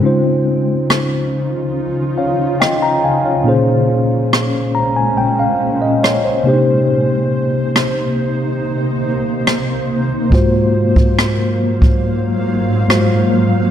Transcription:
0.01 3.41 C#3 medium
0.01 3.42 C#3 medium
0.01 3.42 C#4 medium
0.01 3.43 C#4 medium
0.01 3.43 D#4 medium
0.01 3.42 D#4 medium
0.01 3.42 F4 medium
0.05 3.43 F4 medium
0.05 2.15 C5 medium
0.90 cross-stick loud
2.18 2.59 C#5 soft
2.18 2.58 F5 medium
2.60 2.81 D#5 medium
2.60 2.81 G5 medium
2.60 cross-stick loud
2.82 3.03 G5 medium
2.82 3.03 A#5 medium
3.04 3.24 F5 medium
3.04 3.24 G#5 medium
3.25 3.66 C#5 soft
3.25 3.66 F5 medium
3.44 6.41 A#2 medium
3.44 6.43 A#2 medium
3.44 6.43 G#3 medium
3.44 6.42 A#3 medium
3.44 6.42 C#4 medium
3.44 6.43 C#4 medium
3.44 6.43 G#4 medium
3.44 13.71 C5 medium
3.49 6.23 C5 medium
4.33 cross-stick loud
4.75 4.95 A#5 medium
4.97 5.16 G#5 medium
5.17 5.38 G5 medium
5.39 5.79 F5 medium
5.82 6.02 D#5 medium
6.03 6.23 C#5 medium
6.03 cross-stick medium
6.24 6.48 C5 medium
6.44 9.84 C3 medium
6.44 10.28 C3 medium
6.44 9.85 A#3 medium
6.44 13.71 A#3 medium
6.44 6.53 D4 soft
6.44 10.28 D#4 medium
6.44 9.86 G4 medium
6.49 9.88 D#4 medium
6.49 9.86 C5 medium
7.76 cross-stick loud
9.47 cross-stick medium
10.30 12.84 G#2 medium
10.30 13.71 G#2 medium
10.30 13.71 F#3 medium
10.30 12.84 G#3 medium
10.30 12.85 A#3 medium
10.30 12.85 F4 medium
10.30 13.71 F5 medium
10.30 kick loud
10.34 12.86 F#4 medium
10.34 12.86 C5 medium
10.96 kick medium
11.19 cross-stick loud
11.82 kick medium
12.88 13.71 G#2 medium
12.88 13.71 G#3 medium
12.88 13.71 A#3 soft
12.88 13.71 F4 soft
12.88 13.71 F#4 medium
12.88 13.71 C5 medium
12.88 cross-stick loud

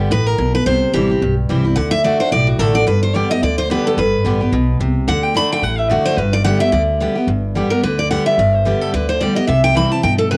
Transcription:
0.00 0.10 B3 medium
0.00 0.10 G4 loud
0.11 0.34 A1 medium
0.11 0.38 A2 medium
0.11 0.27 B4 loud
0.27 0.54 A#4 medium
0.38 0.62 B1 medium
0.38 0.65 B2 medium
0.55 0.66 B4 medium
0.66 0.83 C2 medium
0.66 1.19 C3 loud
0.66 0.92 C5 medium
0.94 1.17 A1 medium
0.94 1.09 E3 medium
0.94 1.09 G3 medium
0.94 1.09 C4 medium
0.94 1.08 E4 loud
0.94 1.34 G4 medium
1.09 1.22 C4 medium
1.09 1.21 E4 medium
1.21 1.45 B1 medium
1.21 1.75 G2 loud
1.49 1.73 C2 medium
1.49 1.64 E3 medium
1.49 1.64 G3 medium
1.49 1.64 C4 medium
1.49 1.63 E4 loud
1.64 1.77 C4 soft
1.64 1.76 E4 medium
1.76 2.10 D2 medium
1.76 2.03 D3 loud
1.76 1.90 F#5 medium
1.91 2.03 E5 loud
2.04 2.19 D3 medium
2.04 2.19 A3 medium
2.04 2.19 D4 medium
2.04 2.19 F#4 medium
2.04 2.19 D5 medium
2.20 2.32 D4 medium
2.20 2.32 F#4 medium
2.20 2.31 C5 medium
2.32 2.55 B1 medium
2.32 2.85 A2 medium
2.32 2.47 D5 loud
2.47 2.59 F#4 medium
2.59 2.83 A1 medium
2.59 2.74 D3 medium
2.59 2.74 A3 medium
2.59 2.75 D4 medium
2.59 2.73 F#4 medium
2.59 2.74 A4 medium
2.74 2.87 D4 soft
2.74 2.86 F#4 medium
2.74 2.87 D5 loud
2.87 3.20 G1 medium
2.87 3.40 G2 medium
2.87 3.02 B4 medium
3.03 3.16 C5 medium
3.14 3.29 D3 medium
3.14 3.29 G3 medium
3.14 3.30 B3 medium
3.14 3.29 G4 loud
3.14 3.30 D5 medium
3.30 3.43 B3 medium
3.30 3.42 G4 medium
3.30 3.42 D#5 loud
3.42 3.76 D2 medium
3.42 3.69 D3 medium
3.42 3.58 D5 medium
3.58 3.70 C5 medium
3.70 3.96 D3 medium
3.70 3.97 G3 medium
3.70 3.97 B3 loud
3.70 3.97 G4 medium
3.70 3.85 B4 medium
3.87 3.98 A4 medium
3.97 4.14 G1 loud
3.97 4.50 G2 loud
3.97 4.77 B4 medium
4.24 4.48 A1 medium
4.24 4.40 D3 medium
4.24 4.40 G3 medium
4.24 4.40 B3 medium
4.24 4.39 G4 loud
4.41 4.53 B3 medium
4.41 4.52 G4 medium
4.52 4.76 B1 medium
4.52 4.79 B2 medium
4.80 5.03 C2 medium
4.80 5.07 C3 medium
5.07 5.41 D2 medium
5.07 5.33 D3 loud
5.07 5.24 F#5 medium
5.24 5.35 G5 loud
5.34 5.61 D3 medium
5.34 5.62 A3 medium
5.34 5.62 D4 medium
5.34 5.62 F#4 loud
5.34 5.51 B5 loud
5.52 5.63 G5 loud
5.62 5.96 A1 medium
5.62 6.16 A2 medium
5.62 5.78 F#5 medium
5.78 5.91 E5 loud
5.90 6.16 D3 medium
5.90 6.17 A3 loud
5.90 6.17 D4 loud
5.90 6.17 F#4 loud
5.90 6.05 D5 medium
6.06 6.18 C5 loud
6.17 6.51 G1 medium
6.17 6.71 G2 loud
6.17 6.33 B4 medium
6.33 6.44 D5 loud
6.45 6.60 D3 medium
6.45 6.60 G3 loud
6.45 6.60 B3 medium
6.45 6.59 G4 loud
6.45 6.60 F#5 loud
6.60 6.73 B3 soft
6.60 6.72 G4 medium
6.60 6.72 E5 loud
6.72 7.06 D2 loud
6.72 6.99 D3 loud
6.72 6.82 D5 medium
7.01 7.15 D3 medium
7.01 7.16 G3 medium
7.01 7.16 B3 loud
7.01 7.14 G4 loud
7.16 7.29 B3 medium
7.16 7.28 G4 medium
7.27 7.61 G1 medium
7.27 7.81 G2 medium
7.55 7.70 D3 medium
7.55 7.71 G3 medium
7.55 7.71 B3 medium
7.55 7.69 G4 medium
7.70 7.83 B3 medium
7.70 7.83 G4 medium
7.70 7.83 A#4 medium
7.83 8.16 D2 medium
7.83 8.09 D3 medium
7.83 7.98 B4 medium
7.99 8.10 D5 medium
8.11 8.37 D3 medium
8.11 8.38 G3 medium
8.11 8.38 B3 loud
8.11 8.38 G4 loud
8.11 8.26 F#5 medium
8.26 8.38 E5 medium
8.38 8.71 G1 medium
8.38 8.91 G2 medium
8.38 8.55 D5 medium
8.55 8.66 C5 loud
8.65 8.92 D3 medium
8.65 8.92 G3 medium
8.65 8.93 B3 medium
8.65 8.93 G4 medium
8.65 8.81 B4 medium
8.81 8.93 A4 medium
8.93 9.27 D2 medium
8.93 9.19 D3 loud
8.93 9.08 B4 medium
9.09 9.21 C5 medium
9.20 9.36 D3 medium
9.20 9.36 G3 medium
9.20 9.36 B3 medium
9.20 9.34 G4 loud
9.20 9.36 D5 medium
9.35 9.49 B3 soft
9.35 9.48 G4 medium
9.35 9.47 D#5 loud
9.47 9.82 C2 medium
9.47 10.01 C3 loud
9.47 9.63 E5 medium
9.64 9.76 G5 loud
9.75 9.90 E3 medium
9.75 9.91 G3 medium
9.75 9.91 C4 medium
9.75 9.89 E4 loud
9.75 9.92 B5 loud
9.91 10.04 C4 medium
9.91 10.03 E4 medium
9.91 10.03 A5 loud
10.03 10.37 G2 medium
10.03 10.30 B2 medium
10.03 10.13 G5 loud
10.18 10.30 A4 medium
10.31 10.37 C3 medium
10.31 10.37 B4 medium

